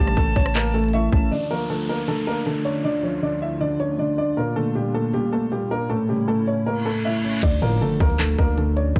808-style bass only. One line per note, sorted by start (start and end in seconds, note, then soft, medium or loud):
0.00 0.16 A1 loud
0.17 0.35 A1 loud
0.36 1.09 A1 loud
1.13 1.31 A1 loud
7.43 7.61 D2 loud
7.62 7.83 A2 loud
7.81 7.99 D3 loud
8.00 8.37 D2 loud
8.39 8.94 D2 loud
8.96 9.00 D2 loud